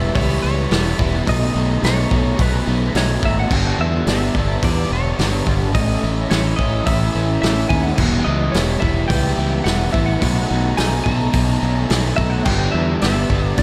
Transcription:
Already playing: E3 G3 B3 E4 E5
0.14 C#2 E3 G3 B3 E4 C#5, kick, open hi-hat
0.42 C#2 G3 B3 E4 C#5
0.71 E1 E3 G3 B3 E4, snare, open hi-hat
0.98 E1 G3 B3 E4, kick
1.26 B1 B2 F#3 A3 D#4 D#5, kick, open hi-hat
1.54 B1 F#3 A3 D#4
1.82 B1 B2 F#3 A3 D#4 C#5, snare, open hi-hat
2.09 B1 F#3 A3 D#4, kick
2.37 B1 B2 F#3 A3 D#4, kick, open hi-hat
2.41 B4
2.66 B1 F#3 A3 D#4
2.94 B1 B2 F#3 A3 D#4 C#5, snare, open hi-hat
3.21 G#1 F#3 A3 D#4, kick
3.25 E5
3.39 F#5
3.50 G1 G2 D3 G3 B3 D4 G5, kick, crash
3.78 E2 G3 B3 D4 E5
4.06 G1 D3 G3 B3 D4 E5, snare, open hi-hat
4.35 G1 G3 B3 D4, kick
4.62 E2 G2 D3 G3 B3 D4 D5, kick, open hi-hat
4.90 E1 G3 B3 D4 C#5
5.18 G1 D3 G3 B3 D4, snare, open hi-hat
5.46 G1 G3 B3 D4, kick
5.73 A1 A2 E3 A3 C#4 E4 D#5, kick, open hi-hat
6.01 A1 A3 C#4 E4
6.30 A1 E3 A3 C#4 E4 C#5, snare, open hi-hat
6.56 A1 C#4 E4 D#5, kick
6.61 A3
6.85 A1 A2 E3 A3 C#4 E4 E5, kick, open hi-hat
7.13 A1 A3 C#4 E4
7.41 A1 E3 A3 C#4 E4 E5, snare, open hi-hat
7.69 D#2 A3 C#4 E4 G#5, kick
7.82 F#5
7.96 E1 E3 G3 B3 E4 E5, kick, crash
8.25 C#2 G3 B3 E4 D#5
8.52 E1 E3 G3 C#5, snare, open hi-hat
8.56 B3 E4
8.80 E1 B3 E4 E5, kick
8.85 G3
9.08 C#2 E3 G3 B3 G5, kick, open hi-hat
9.12 E4
9.37 C#2 G3 B3 E4
9.64 E1 E3 G3 B3 E4 F#5, snare, open hi-hat
9.92 A1 G3 B3 E4 E5, kick
10.06 F#5
10.21 B1 B2 F#3 A3 D#4, kick, open hi-hat
10.49 B1 F#3 A3 D#4
10.77 B1 B2 F#3 A3 D#4 G#5, snare, open hi-hat
11.04 B1 A3 D#4 A5, kick
11.08 F#3
11.32 B1 B2 F#3 A3 D#4, kick, open hi-hat
11.60 B1 F#3 A3 D#4
11.81 G#5
11.89 B1 B2 F#3 A3 D#4, snare, open hi-hat
12.16 B1 F#3 A3 D#4 E5, kick
12.30 F#5
12.45 G1 G2 D3 G3 B3 D4 G5, kick, crash
12.72 E2 B3 D4 E5
12.77 G3
13.02 G1 D3 G3 B3 D4 E5, snare, open hi-hat
13.29 G1 G3 B3 D4, kick
13.47 D5
13.57 E2 G2 D3 G3 D5, kick, open hi-hat

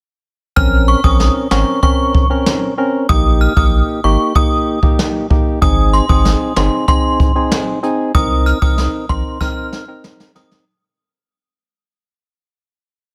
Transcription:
0.56 A#1 C4 C#4 A#4 F6, kick
0.88 C#6
1.04 A#1 C4 C#4 A#4 D#6, kick
1.20 snare
1.51 G#1 C4 C#4 A#4 C#6, cross-stick, snare
1.83 C4 C#4 A#4 C#6, kick
2.15 kick
2.30 C4 C#4 A#4
2.46 cross-stick, snare
2.78 C4 C#4 A#4
3.09 A#1 A#3 D#4 G4 D#6, kick
3.41 F6
3.56 A#1 A#3 D#4 G4 D#6, kick
4.04 G#1 A#3 D#4 G4 C#6
4.35 A#3 D#4 G4 D#6, kick
4.83 A#3 D#4 G4, kick
4.99 cross-stick, snare
5.30 A#3 D#4 G4, kick
5.61 G#1 C4 D#4 G#4 D#6, kick, closed hi-hat
5.93 C6, closed hi-hat
6.09 G#1 C4 D#4 G#4 D#6, kick
6.25 snare, closed hi-hat
6.56 G1 C4 D#4 G#4 C6, cross-stick, snare, closed hi-hat
6.88 C4 D#4 G#4 C6, kick, closed hi-hat
7.20 kick, closed hi-hat
7.35 C4 D#4 G#4
7.51 cross-stick, snare, closed hi-hat
7.83 C4 D#4 G#4, closed hi-hat
8.14 C2 C4 D#4 A#4 D#6, kick, closed hi-hat
8.46 F6, closed hi-hat
8.62 C2 C4 D#4 A#4 D#6, kick
8.78 snare, closed hi-hat
9.09 A#1 C4 D#4 A#4 C6, kick, closed hi-hat
9.41 C4 D#4 A#4 F6, kick, snare
9.73 snare
9.88 C4 D#4 A#4
10.04 snare
10.20 snare
10.35 C4 D#4 A#4 D#6, snare
10.51 snare

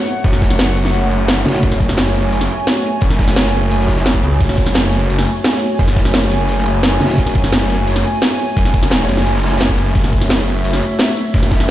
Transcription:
Already playing: A3 F#4 C#5 F#5
0.07 closed hi-hat, cabasa
0.24 F#1, kick, closed hi-hat
0.33 snare, cabasa
0.42 kick, snare, closed hi-hat, cabasa
0.50 snare
0.59 F#1, snare, closed hi-hat
0.68 cabasa
0.76 closed hi-hat, cabasa
0.85 snare, closed hi-hat
0.94 closed hi-hat
1.02 cabasa
1.11 closed hi-hat, cabasa
1.28 snare, closed hi-hat
1.37 cabasa
1.45 F#1, snare, closed hi-hat, cabasa
1.50 snare, closed hi-hat
1.55 snare, closed hi-hat
1.63 F#1 G#5, kick, closed hi-hat
1.72 snare, cabasa
1.80 kick, closed hi-hat, cabasa
1.89 snare
1.97 F#1, snare, closed hi-hat
2.06 cabasa
2.15 closed hi-hat, cabasa
2.32 F#1, closed hi-hat
2.41 snare, closed hi-hat, cabasa
2.50 closed hi-hat, cabasa
2.59 closed hi-hat
2.67 snare, closed hi-hat
2.76 snare, cabasa
2.84 closed hi-hat, cabasa
3.01 F#1, kick, closed hi-hat
3.10 snare, closed hi-hat, cabasa
3.19 kick, snare, closed hi-hat, cabasa
3.27 snare, closed hi-hat
3.36 F#1, snare, closed hi-hat
3.45 snare, closed hi-hat, cabasa
3.54 closed hi-hat, cabasa
3.71 F#1, closed hi-hat
3.80 snare, cabasa
3.88 kick, snare, closed hi-hat, cabasa
3.97 snare, closed hi-hat
4.06 snare, closed hi-hat
4.14 kick, cabasa
4.23 C#2, closed hi-hat, cabasa
4.40 F#1 G#5, kick, closed hi-hat, crash, ride
4.49 snare, cabasa
4.58 kick, closed hi-hat, ride, cabasa
4.67 snare
4.74 F#1, snare, closed hi-hat, ride
4.84 cabasa
4.92 closed hi-hat, ride, cabasa
5.10 F#1, closed hi-hat, ride
5.19 snare, closed hi-hat, cabasa
5.27 closed hi-hat, ride, cabasa
5.36 closed hi-hat
5.44 snare, closed hi-hat, ride
5.53 snare, cabasa
5.62 closed hi-hat, ride, cabasa
5.79 F#1, kick, closed hi-hat, ride
5.88 snare, closed hi-hat, cabasa
5.97 kick, snare, closed hi-hat, ride, cabasa
6.05 snare
6.14 F#1, snare, closed hi-hat, ride
6.23 cabasa
6.31 closed hi-hat, ride, cabasa
6.40 closed hi-hat
6.49 closed hi-hat, ride
6.57 snare, cabasa
6.66 closed hi-hat, ride, cabasa
6.83 snare, closed hi-hat, ride
6.92 cabasa
7.00 F#1, snare, closed hi-hat, ride, cabasa
7.05 snare, closed hi-hat
7.09 snare, closed hi-hat
7.18 F#1, kick, closed hi-hat, ride
7.27 snare, cabasa
7.35 kick, closed hi-hat, ride, cabasa
7.44 snare
7.52 F#1, snare, closed hi-hat, ride
7.61 cabasa
7.70 closed hi-hat, ride, cabasa
7.87 F#1, closed hi-hat, ride
7.96 snare, cabasa
8.05 closed hi-hat, ride, cabasa
8.14 closed hi-hat
8.22 snare, closed hi-hat, ride
8.31 snare, cabasa
8.39 closed hi-hat, ride, cabasa
8.57 F#1, kick, closed hi-hat, ride
8.65 snare, closed hi-hat, cabasa
8.74 kick, closed hi-hat, ride, cabasa
8.82 snare
8.91 E1, snare, closed hi-hat, ride
9.00 cabasa
9.09 F#1, closed hi-hat, ride, cabasa
9.17 snare
9.26 closed hi-hat, ride
9.35 snare, cabasa
9.43 snare, closed hi-hat, ride, cabasa
9.47 snare, closed hi-hat
9.52 snare, closed hi-hat
9.56 snare, closed hi-hat
9.60 F#1, snare, closed hi-hat, ride
9.69 kick, cabasa
9.78 closed hi-hat, ride, cabasa
9.95 F#1 E5, kick, closed hi-hat, ride
10.04 snare, cabasa
10.13 kick, closed hi-hat, ride, cabasa
10.21 snare
10.29 F#1, snare, closed hi-hat, ride
10.39 cabasa
10.47 closed hi-hat, ride, cabasa
10.64 F#1, closed hi-hat, ride
10.73 snare, closed hi-hat, cabasa
10.82 closed hi-hat, ride, cabasa
10.91 closed hi-hat
10.99 snare, closed hi-hat, ride
11.08 snare, cabasa
11.17 closed hi-hat, ride, cabasa
11.34 F#1, kick, closed hi-hat, ride
11.43 snare, cabasa
11.51 kick, snare, closed hi-hat, ride, cabasa
11.60 snare

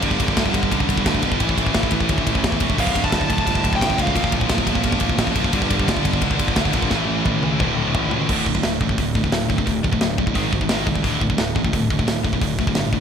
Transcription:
0.02 G1 G2 D3 G3, kick, ride
0.10 G2 D3, kick
0.18 G1 G2 D3, kick, ride
0.25 G2 D3, kick
0.32 G2 D3
0.37 G1, kick, snare, ride
0.41 G2 D3
0.46 G2 D3, kick
0.54 G1 G2 D3, kick, ride
0.63 G2 D3, kick
0.71 C#2 G2 D3, kick, ride
0.78 G2 D3, kick
0.86 G1 G2 D3, kick, ride
0.95 G2 D3, kick
1.01 G2 D3
1.06 D2 G2, kick, snare, ride
1.10 D3
1.15 G2 D3, kick
1.23 G1 G2 D3 G3, kick, ride
1.32 G2 D3, kick
1.40 A1 A2 E3 A3, kick, ride
1.47 A2 E3, kick
1.55 A1 A2 E3, kick, ride
1.62 A2 E3
1.66 A2, kick
1.72 A1 E3, kick, snare, ride
1.78 A2 E3
1.83 A2 E3, kick
1.91 A1 A2, kick, ride
1.95 E3
2.01 A2 E3, kick
2.08 D2 A2 E3, kick, ride
2.15 A2 E3, kick
2.24 A1 A2 E3, kick, ride
2.32 A2 E3, kick
2.39 A2 E3
2.43 E2 A2, kick, snare, ride
2.48 E3, kick
2.54 A2 E3
2.60 E1 A2 A3, kick, ride
2.64 E3
2.69 A2 E3, kick
2.77 D1 D2 A2 D3 F5, kick, crash
2.85 D2 A2, kick
2.92 D1 D2 A2, kick, ride
3.00 D2 A2 A5, kick
3.07 D2 A2
3.12 D1 D2 A2, kick, snare, ride
3.21 D2 A2, kick
3.29 D1 D2 A2 A5, kick, ride
3.38 D2 A2, kick
3.47 G1 D2 A2, kick, ride
3.54 D2 A2, kick
3.62 D1 D2 A2, kick, ride
3.70 D2 A2, kick
3.76 D2 A2 G5
3.81 A1 D2, kick, snare, ride
3.85 A2
3.90 D2 A2, kick
3.98 C#2 D2 A2 D3 F5, kick, ride
4.07 D2 A2, kick
4.15 D1 A#2 F3 A#3, kick, ride
4.23 A#2 F3, kick
4.31 D1 A#2 F3, kick, ride
4.38 A#2 F3, kick
4.45 A#2 F3
4.49 D1 A#2, kick, snare, ride
4.54 F3, kick
4.61 A#2 F3
4.67 D1 A#2 F3, kick, ride
4.75 A#2 F3, kick
4.83 G1 A#2 F3, kick, ride
4.92 A#2 F3, kick
4.99 D1 A#2 F3, kick, ride
5.06 A#2 F3, kick
5.14 A1 A#2 F3
5.18 A#2 F3, kick, snare, ride
5.27 A#2 F3, kick
5.35 F#1 A#2 F3 A#3, kick, ride
5.44 A#2 F3, kick
5.53 G1 G2 D3, kick, ride
5.57 G3
5.61 G2 D3, kick
5.68 G1 G2 D3, kick, ride
5.76 G2 D3, kick
5.83 G2 D3
5.88 G1, kick, snare, ride
5.92 G2 D3
5.97 G2 D3, kick
6.05 G1 G2 D3, kick, ride
6.13 G2 D3, kick
6.21 C#2 G2 D3, kick, ride
6.29 G2 D3, kick
6.37 G1 G2 D3, kick, ride
6.45 G2 D3, kick
6.52 G2 D3, snare, ride
6.56 D2, kick
6.61 G2 D3
6.65 G2 D3, kick
6.73 A#1 G2 D3 G3, kick, ride
6.82 G2 D3, kick
6.90 A1 A2 E3 A3, kick, snare
6.98 A2 E3
7.05 A1 A2 E3
7.14 A2 E3
7.21 A2 E3
7.25 A1 E3, kick, high tom
7.30 A2
7.36 A2 E3
7.42 C#2 A2 E3, high tom
7.51 A2 E3
7.60 D1 D2 A2 D3, kick, mid tom
7.67 D2 A2
7.75 D1 D2 A2
7.83 D2 A2
7.89 D2 A2
7.95 A1 D2, kick, floor tom
7.99 A2
8.05 D2 A2
8.11 C#2 D2 A2, floor tom
8.20 D2 A2
8.28 D1 D2 A2 D3, kick, crash
8.46 D2 A2, kick
8.55 D2 A2, kick
8.63 D1 D2 A2, snare, open hi-hat
8.80 A1 D2 A2, kick
8.89 D2 A2, kick
8.98 D1 D2 A2, kick, open hi-hat
9.15 D2 A2, kick
9.24 D2 A2, kick
9.31 D1 D2 A2, snare, open hi-hat
9.49 D2 A2, kick
9.57 D2 A2, kick
9.66 D1 D2 A2, kick, open hi-hat
9.83 D1 D2 A2, kick
9.92 D2 A2, kick
10.00 D1 D2 A2, snare, open hi-hat
10.18 D2 A2, kick
10.26 D2 A2, kick
10.34 G#1 G#2 D#3 G#3, kick, open hi-hat
10.52 G#1 G#2 D#3, kick
10.61 G#2 D#3, kick
10.69 G#1 G#2 D#3 G#3, snare, open hi-hat
10.87 C2 G#2 D#3, kick
10.95 G#2 D#3, kick
11.03 D1 D2 A2 D3, kick, open hi-hat
11.21 D2 A2, kick
11.30 D2 A2, kick
11.38 D1 D2 A2, snare, open hi-hat
11.56 A1 D2 A2, kick
11.64 D2 A2, kick
11.73 D1 D2 A2, kick, open hi-hat
11.90 D2 A2, kick
11.98 D2 A2, kick
12.06 D1 D2 A2, snare, open hi-hat
12.23 D2 A2, kick
12.33 D2 A2, kick
12.41 D1 D2 A2, kick, open hi-hat
12.59 D1 D2 A2, kick
12.67 D2 A2, kick
12.75 G1 D2 A2, snare, open hi-hat
12.93 D2 A2, kick

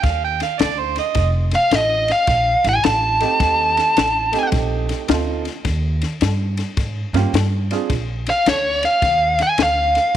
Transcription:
0.03 D#2 F5, kick, snare, ride
0.24 G5
0.40 F5, snare, ride
0.59 D2 D5, snare, ride
0.79 C5
0.96 D#5, snare, ride
1.15 F1, kick, snare, ride
1.51 F5, snare, ride
1.71 A1, snare, ride
1.75 D#5
2.08 F5, snare, ride
2.27 A#1, kick, snare, ride
2.64 A1, snare, ride
2.69 G#5
2.84 A1 A5, snare, ride
3.20 A3 C4 D#4 G4, snare, ride
3.40 D#2, kick, snare, ride
3.77 snare, ride
3.97 A1, snare, ride
4.32 A3 C4 D#4 G4, snare, ride
4.52 A#1, kick, snare, ride
4.89 snare, ride
5.08 D2 A3 C4 D#4 F4, snare, ride
5.45 snare, ride
5.65 D#2, kick, snare, ride
6.02 snare, ride
6.21 G2, snare, ride
6.57 snare, ride
6.77 G#2, kick, snare, ride
7.13 G2 A#3 C#4 F4 G4, snare, ride
7.33 G2, snare, ride
7.71 C4 D4 F4 G#4, snare, ride
7.90 A#1, kick, snare, ride
8.27 F5, snare, ride
8.46 D2 C#5, snare, ride
8.83 F5, snare, ride
9.02 D#2, kick, snare, ride
9.39 G#5, snare, ride
9.58 D2, snare, ride
9.63 F5
9.95 snare, ride

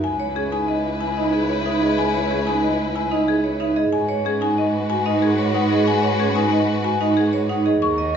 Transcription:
0.03 C#2 E4 B4 G#5
0.20 C#5
0.36 C#4 G#4
0.52 D#4 G#5
0.68 D#5
1.01 E4 G#5
1.17 D#4 D#5
1.33 G#4
1.49 C#5
1.66 D#4 E5
1.82 G#4 D#5
1.98 G#5
2.14 C#5
2.30 C#4 G#4
2.47 D#4 G#5
2.63 D#5
2.95 E4 G#5
3.12 D#4 D#5
3.28 G#4
3.44 C#5
3.60 D#4 E5
3.76 G#4 D#5
3.92 G#2 F#4 B4 G#5
4.09 C#5
4.25 C#4 G#4
4.41 D#4 G#5
4.58 D#5
4.90 F#4 G#5
5.06 D#4 D#5
5.22 G#4
5.38 C#5
5.54 D#4 F#5
5.71 G#4 D#5
5.87 G#5
6.03 C#5
6.19 C#4 G#4
6.36 D#4 G#5
6.52 D#5
6.84 F#4 G#5
7.01 D#4 D#5
7.17 G#4
7.33 C#5
7.50 D#4 F#5
7.66 G#4 D#5
7.82 D#2 F#4 A#4 C#6
7.98 D#5

